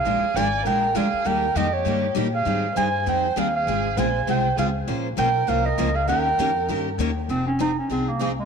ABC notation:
X:1
M:4/4
L:1/8
Q:"Swing" 1/4=199
K:Ebmix
V:1 name="Clarinet"
f2 a2 g2 f2 | g2 e d3 z f- | f2 a2 g2 f f- | f2 a2 g2 f z |
z2 g2 f e2 f | g6 z2 | [K:Fm] C D E D C B, B, A, |]
V:2 name="Violin"
A2 =d2 B2 A2 | B2 G G3 z A- | A2 c2 c2 A A- | A2 c2 c2 A z |
z2 B2 B B2 A | B6 z2 | [K:Fm] z8 |]
V:3 name="Steel-string acoustic guitar"
[F,A,=DFB] z [F,A,DFB] z [F,A,DFB] z [F,A,DFB] z | [E,G,B,EG] z [E,G,B,EG] z [E,G,B,EG] z [E,G,B,EG] z | [E,G,CEA] z [E,G,CEA] z [E,G,CEA] z [E,G,CEA] z | [D,A,CFA] z [D,A,CFA] z [D,A,CFA] z [D,A,CFA] z |
[F,B,DFc] z [F,B,DFc] z [F,B,DFc] z [F,B,DFc] z | [E,B,DGB] z [E,B,DGB] z [E,B,DGB] z [E,B,DGB] z | [K:Fm] [F,CEA] z [F,CEA] z [F,CEA] z [F,CEA] z |]
V:4 name="Steel-string acoustic guitar"
[F,A,=DFB] z [F,A,DFB] z [F,A,DFB] z [F,A,DFB] z | [E,G,B,EG] z [E,G,B,EG] z [E,G,B,EG] z [E,G,B,EG] z | [E,G,CEA] z [E,G,CEA] z [E,G,CEA] z [E,G,CEA] z | [D,A,CFA] z [D,A,CFA] z [D,A,CFA] z [D,A,CFA] z |
[F,B,DFc] z [F,B,DFc] z [F,B,DFc] z [F,B,DFc] z | [E,B,DGB] z [E,B,DGB] z [E,B,DGB] z [E,B,DGB] z | [K:Fm] [F,CEA] z [F,CEA] z [F,CEA] z [F,CEA] z |]
V:5 name="Upright bass" clef=bass
B,,, z A,,,2 B,,,2 =D,, z | E,,2 F,,2 G,,2 B,,2 | A,,2 G,,2 F,,2 E,,2 | A,,,2 B,,,2 C,,2 D,,2 |
B,,,2 _C,,2 =C,,2 D,,2 | E,,2 F,,2 G,,2 E,,2 | [K:Fm] F,,,4 C,,4 |]